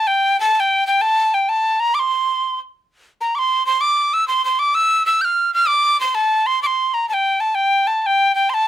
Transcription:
0.07 0.39 G5 medium
0.40 0.55 A5 medium
0.55 0.61 A5 medium
0.60 0.86 G5 medium
0.87 1.03 G5 medium
1.01 1.36 A5 loud
1.34 1.50 G5 medium
1.49 1.81 A5 medium
1.80 1.96 A#5 medium
1.95 2.00 D6 medium
1.99 2.59 C6 medium
3.21 3.37 A#5 medium
3.35 3.66 C6 medium
3.35 3.40 D6 medium
3.66 3.82 C6 loud
3.81 4.15 D6 medium
4.13 4.27 E6 medium
4.28 4.45 C6 medium
4.45 4.61 C6 medium
4.59 4.76 D6 loud
4.75 5.06 E6 loud
5.06 5.23 E6 medium
5.21 5.53 F6 medium
5.21 5.26 G6 medium
5.54 5.69 F6 loud
5.68 6.00 D6 medium
6.00 6.16 C6 loud
6.15 6.48 A5 medium
6.46 6.62 C6 loud
6.63 6.95 C6 medium
6.63 6.67 D6 medium
6.94 7.08 A#5 medium
7.09 7.15 A5 medium
7.14 7.42 G5 medium
7.40 7.56 A5 medium
7.55 7.89 G5 medium
7.87 8.02 A5 medium
8.02 8.07 A5 medium
8.06 8.35 G5 medium
8.35 8.51 G5 medium
8.50 8.55 C6 medium
8.54 8.68 A5 medium

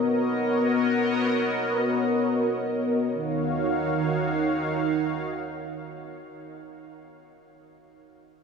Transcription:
0.00 3.10 B3 medium
0.00 3.10 F#4 medium
0.00 3.10 A#4 medium
0.00 3.10 C#5 medium
0.00 3.10 D#5 medium
3.14 6.58 D#3 medium
3.14 6.58 D#4 medium
3.14 6.58 F#4 medium
3.14 6.58 C#5 medium
3.14 6.58 F5 medium

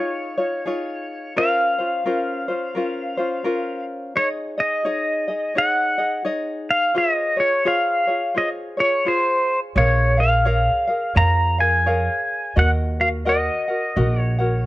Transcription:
0.00 0.38 D#4 medium
0.00 0.37 F4 medium
0.00 0.38 G#4 medium
0.00 0.36 C#5 medium
0.00 1.43 C#5 medium
0.38 0.65 D#4 medium
0.38 0.66 F4 medium
0.38 0.65 C#5 medium
0.66 1.36 D#4 medium
0.66 1.37 F4 medium
0.66 1.36 G#4 medium
0.66 1.37 C#5 medium
1.36 1.79 C#4 medium
1.36 1.79 F4 medium
1.36 1.79 A#4 medium
1.36 1.77 C5 medium
1.36 3.85 F5 loud
1.78 2.05 C#4 soft
1.78 2.05 F4 medium
1.78 2.06 C5 medium
2.06 2.48 C#4 medium
2.06 2.48 F4 medium
2.06 2.48 A#4 medium
2.06 2.47 C5 medium
2.48 2.75 C#4 medium
2.48 2.75 F4 medium
2.48 2.76 C5 medium
2.75 3.18 C#4 medium
2.75 3.17 F4 medium
2.75 3.18 A#4 medium
2.75 3.16 C5 medium
3.17 3.44 C#4 medium
3.17 3.44 F4 medium
3.17 3.45 C5 medium
3.44 4.16 C#4 medium
3.44 4.15 F4 medium
3.44 4.15 A#4 medium
3.44 4.16 C5 medium
4.15 4.58 D#4 medium
4.15 4.57 G#4 medium
4.15 4.58 C#5 medium
4.15 4.28 C#5 medium
4.15 4.56 D#5 medium
4.58 4.84 D#4 soft
4.58 4.85 G#4 medium
4.58 4.85 D#5 medium
4.58 5.58 D#5 medium
4.85 5.28 D#4 medium
4.85 5.28 G#4 medium
4.85 5.28 C#5 medium
4.85 5.27 D#5 medium
5.28 5.55 D#4 medium
5.28 5.55 G#4 soft
5.28 5.55 D#5 medium
5.55 5.98 D#4 medium
5.55 5.98 G#4 medium
5.55 5.98 C#5 medium
5.55 5.97 D#5 medium
5.55 6.23 F#5 loud
5.98 6.24 D#4 soft
5.98 6.24 G#4 medium
5.98 6.25 D#5 medium
6.25 6.95 D#4 medium
6.25 6.96 G#4 medium
6.25 6.94 C#5 medium
6.25 6.96 D#5 medium
6.71 6.97 F5 medium
6.95 7.37 F4 medium
6.95 7.37 G#4 medium
6.95 7.37 C5 medium
6.95 7.35 C#5 medium
6.95 7.40 D#5 medium
7.37 7.64 F4 soft
7.37 7.64 G#4 soft
7.37 7.65 C#5 medium
7.37 7.67 C#5 medium
7.65 8.08 F4 medium
7.65 8.07 G#4 medium
7.65 8.08 C5 medium
7.65 8.06 C#5 medium
7.65 8.37 F5 medium
8.07 8.34 F4 soft
8.07 8.35 G#4 medium
8.07 8.35 C#5 medium
8.35 8.78 F4 medium
8.35 8.77 G#4 medium
8.35 8.77 C5 medium
8.35 8.76 C#5 medium
8.35 8.49 D#5 medium
8.77 9.05 F4 soft
8.77 9.05 G#4 medium
8.77 9.05 C#5 medium
8.77 9.07 C#5 medium
9.05 9.76 F4 medium
9.05 9.76 G#4 medium
9.05 9.75 C5 medium
9.05 9.59 C5 medium
9.75 10.67 A#1 loud
9.75 10.18 G#4 medium
9.75 10.17 A#4 medium
9.75 10.18 C#5 medium
9.75 10.20 C#5 medium
9.75 10.16 F5 medium
10.17 10.44 G#4 soft
10.17 10.45 A#4 soft
10.17 10.45 F5 medium
10.17 11.20 F5 medium
10.45 10.88 G#4 medium
10.45 10.87 A#4 medium
10.45 10.88 C#5 medium
10.45 10.86 F5 loud
10.87 11.14 G#4 soft
10.87 11.15 A#4 soft
10.87 11.15 F5 medium
11.15 12.07 F2 medium
11.15 11.58 G#4 medium
11.15 11.58 A#4 medium
11.15 11.58 C#5 medium
11.15 11.57 F5 medium
11.15 11.60 A#5 loud
11.58 11.85 G#4 soft
11.58 11.86 A#4 soft
11.58 11.86 F5 medium
11.58 12.60 G#5 loud
11.86 12.56 G#4 medium
11.86 12.57 A#4 medium
11.86 12.55 C#5 medium
11.86 12.56 F5 medium
12.56 13.47 D#2 medium
12.56 12.98 F#4 medium
12.56 12.98 A#4 loud
12.56 12.98 D#5 medium
12.56 12.99 F#5 medium
12.56 12.70 F#5 loud
13.00 13.25 F#4 soft
13.00 13.25 A#4 medium
13.00 13.08 F5 medium
13.25 13.68 F#4 medium
13.25 13.67 A#4 loud
13.25 13.68 D#5 medium
13.25 14.20 D#5 medium
13.25 13.67 F#5 loud
13.68 13.95 F#4 soft
13.68 13.96 A#4 soft
13.68 13.96 F#5 soft
13.96 14.66 A#1 loud
13.96 14.39 F#4 medium
13.96 14.39 A#4 medium
13.96 14.38 D#5 medium
13.96 14.37 F#5 medium
14.20 14.64 C#5 medium
14.39 14.65 F#4 medium
14.39 14.66 A#4 medium
14.39 14.66 F#5 medium

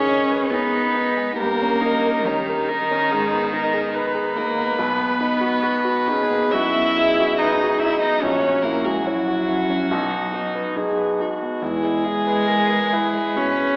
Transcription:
0.00 1.39 D#3 soft
0.00 1.17 G#3 soft
0.00 0.52 C#4 loud
0.00 0.09 D#4 medium
0.00 0.53 G#4 medium
0.00 0.54 G#4 medium
0.00 0.30 B4 medium
0.00 0.52 C#5 medium
0.09 0.42 D#4 soft
0.30 0.63 B4 soft
0.50 1.37 B3 medium
0.50 1.36 D#4 medium
0.50 0.86 G#4 medium
0.50 1.37 B4 medium
0.74 1.07 B4 soft
0.94 1.29 D#4 soft
1.17 1.38 G#3 soft
1.37 3.08 G2 medium
1.37 2.26 A#3 medium
1.37 1.82 G4 medium
1.37 2.28 A#4 medium
1.62 1.95 C#4 soft
1.80 2.25 D#4 medium
1.84 2.17 D#4 medium
2.06 2.39 A#4 soft
2.24 4.37 D#3 medium
2.24 4.38 D#4 medium
2.24 2.70 G4 medium
2.24 2.60 C#5 soft
2.49 2.82 A#4 medium
2.68 3.03 D#4 soft
2.68 3.12 A#4 medium
2.91 3.11 C#4 soft
3.10 4.75 G#2 medium
3.10 3.52 G#4 medium
3.32 3.65 B3 soft
3.53 3.86 D#4 soft
3.53 3.96 A#4 medium
3.74 4.07 G#4 soft
3.94 5.64 B4 medium
3.94 4.28 B4 medium
4.15 4.48 G#4 soft
4.35 4.79 A#3 medium
4.35 4.71 D#4 soft
4.35 4.78 A#4 medium
4.58 4.79 B3 soft
4.77 6.49 B1 medium
4.77 6.14 B3 medium
4.77 6.54 B4 medium
5.00 5.33 B3 soft
5.20 5.54 D#4 medium
5.41 5.75 F#4 soft
5.63 6.10 F#4 medium
5.63 5.98 B4 soft
5.85 6.21 F#4 soft
6.08 6.44 D#4 medium
6.08 6.55 G#4 medium
6.12 6.24 C#4 medium
6.22 6.34 B3 medium
6.31 6.44 A#3 medium
6.31 6.67 B3 soft
6.43 6.54 B3 medium
6.52 6.89 F#2 soft
6.52 7.40 E4 loud
6.52 6.97 F#4 medium
6.52 7.37 E5 medium
6.76 7.10 B3 soft
6.97 7.31 D#4 medium
6.97 8.21 G#4 medium
7.20 7.53 F#4 soft
7.38 7.81 D#4 medium
7.38 7.74 B4 medium
7.38 7.79 D#5 medium
7.63 7.95 F#4 soft
7.80 8.00 E4 medium
7.80 8.01 E5 medium
7.85 8.16 D#4 soft
8.01 8.22 B3 soft
8.01 8.23 D#4 medium
8.01 8.23 D#5 medium
8.21 9.86 A#1 medium
8.21 8.64 C#4 medium
8.21 9.08 F#4 medium
8.21 8.64 C#5 medium
8.43 8.76 C#4 soft
8.62 8.86 A#3 medium
8.62 8.98 E4 medium
8.62 8.86 A#4 medium
8.84 9.04 G#3 medium
8.84 9.18 F#4 soft
8.84 9.06 G#4 medium
9.04 11.14 F#3 medium
9.04 9.51 E4 medium
9.04 11.18 F#4 medium
9.04 9.40 C#5 soft
9.28 9.61 F#4 soft
9.49 9.92 C#4 medium
9.49 9.82 E4 soft
9.70 9.90 C#4 soft
9.90 11.58 B1 medium
9.90 10.32 D#4 medium
10.13 10.47 B3 soft
10.33 10.78 D#4 medium
10.33 10.68 D#4 soft
10.55 10.89 B4 soft
10.76 11.11 D#4 medium
10.76 11.22 G#4 medium
10.98 11.32 B4 soft
11.20 11.53 D#4 soft
11.20 11.64 F#4 medium
11.42 11.62 B3 soft
11.62 13.33 E2 medium
11.62 13.38 G#3 medium
11.62 12.06 E4 medium
11.62 13.39 G#4 medium
11.83 12.17 G#3 soft
12.04 12.39 E4 soft
12.04 12.48 G#4 medium
12.27 12.60 B4 medium
12.47 12.82 G#4 soft
12.47 12.94 A#4 medium
12.68 13.05 B4 soft
12.93 13.28 E4 medium
12.93 13.76 B4 medium
13.14 13.50 G#3 soft
13.36 13.71 B2 soft
13.36 13.76 C#4 medium
13.36 13.76 C#5 medium
13.61 13.76 G#3 soft

